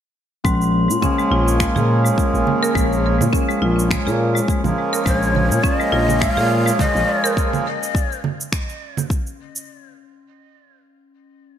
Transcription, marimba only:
0.45 1.01 G#3 medium
1.03 1.18 C#4 medium
1.18 1.30 G#3 medium
1.32 1.47 F4 medium
1.60 1.74 G#3 medium
1.76 1.88 G#4 medium
2.05 2.61 G#3 medium
2.63 2.74 A#4 loud
2.75 3.32 G#3 medium
3.33 3.48 C#4 medium
3.49 3.61 G#3 medium
3.62 3.77 F4 medium
3.91 4.05 G#3 medium
4.07 4.19 G#4 medium
4.35 4.92 G#3 medium
4.93 5.05 A#4 loud
5.06 5.62 G#3 medium
5.63 5.79 C#4 medium
5.80 5.91 G#3 medium
5.92 6.08 F4 medium
6.21 6.36 G#3 medium
6.37 6.50 G#4 medium
6.66 7.22 G#3 medium
7.24 7.36 A#4 loud

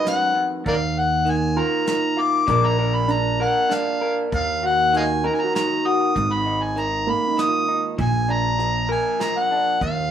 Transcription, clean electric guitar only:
0.00 1.24 D#3 medium
0.00 0.66 G#3 medium
0.00 0.62 F#4 medium
0.00 0.62 B4 medium
0.05 0.35 F#2 medium
0.35 0.64 F2 medium
0.65 2.47 D#2 medium
1.25 1.85 D#3 medium
1.57 2.49 A#4 medium
1.87 2.47 D#3 medium
2.17 2.44 F4 medium
2.47 4.31 A#2 medium
2.47 3.07 D4 medium
2.47 2.78 A#4 medium
2.79 3.40 A#4 medium
3.08 3.68 D4 medium
3.40 4.01 A#4 medium
3.69 4.28 D4 medium
4.01 5.24 A#4 medium
4.32 6.15 D#2 medium
4.63 5.85 F#4 soft
4.93 5.53 D#3 medium
5.24 6.18 A#4 medium
5.54 6.75 D#3 medium
5.86 6.12 F#4 medium
6.15 7.95 G#2 medium
6.46 7.67 D#4 medium
6.76 7.36 D#3 medium
7.37 7.98 D#3 medium
7.68 7.95 D#4 medium
7.98 9.81 A#2 medium
8.29 9.50 D4 soft
8.59 9.19 F3 medium
8.89 10.11 A#4 medium
9.20 9.77 F3 medium
9.51 9.78 D4 medium
9.81 10.11 D#2 medium

